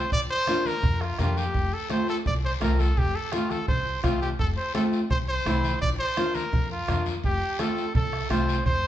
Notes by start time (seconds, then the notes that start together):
0.12 A#1 D5, bombo low, low conga, long guiro
0.30 C5, high conga
0.47 A#3 D4 F4, bombo rim, high conga, short guiro
0.66 A#4, high conga, short guiro
0.83 F2, bombo low, high conga, low conga, long guiro
1.01 F4, bombo rim
1.18 F2 A#3 D4 F4 G4, bombo rim, high conga, low conga, short guiro
1.37 G4, short guiro
1.54 F1, bombo low, long guiro
1.73 A4, high conga
1.89 A3 C4 F4 C5, bombo rim, high conga, short guiro
2.08 A4, short guiro
2.26 C2 D5, bombo low, high conga, low conga, long guiro
2.45 C5
2.60 C2 A3 C4 F4 A#4, bombo rim, high conga, short guiro
2.79 A4, high conga, short guiro
2.97 F1 G4, bombo low, low conga, long guiro
3.15 A4, high conga
3.32 A3 C4 F4, bombo rim, high conga, short guiro
3.51 A4, high conga, short guiro
3.68 C2 C5, bombo low, high conga, low conga, long guiro
4.03 C2 A3 C4 F4, bombo low, bombo rim, high conga, low conga, short guiro
4.22 G4, short guiro
4.39 F1 A4, bombo low, long guiro
4.57 C5, high conga
4.74 A3 C4 F4 A4, bombo rim, high conga, short guiro
4.92 short guiro
5.10 C2 C5, bombo low, high conga, low conga, long guiro
5.28 C5
5.45 C2 A3 C4 E4, bombo rim, high conga, short guiro
5.64 high conga, short guiro
5.81 A#1 D5, bombo low, low conga, long guiro
5.99 C5, high conga
6.17 A#3 D4 F4, bombo rim, high conga, short guiro
6.35 A#4, high conga, short guiro
6.53 F2, bombo low, high conga, low conga, long guiro
6.71 F4
6.88 F2 A#3 D4 F4, bombo rim, high conga, low conga, short guiro
7.06 high conga, short guiro
7.24 F1 G4, bombo low, long guiro
7.42 high conga
7.59 A3 C4 F4 A4, bombo rim, high conga, short guiro
7.77 short guiro
7.95 C2 A4, bombo low, high conga, low conga, long guiro
8.13 bombo rim
8.30 C2 A3 C4 F4 C5, bombo rim, high conga, short guiro
8.48 short guiro
8.65 F1 C5, bombo low, low conga, long guiro
8.84 high conga